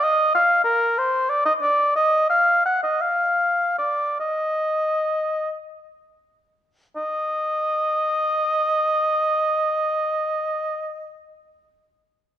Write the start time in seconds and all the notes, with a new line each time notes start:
0.04 D#5
0.34 F5
0.64 A#4
0.98 C5
1.29 D5
1.45 D#5
1.62 D5
1.96 D#5
2.30 F5
2.65 F#5
2.83 D#5
3.01 F5
3.78 D5
4.20 D#5
6.96 D#5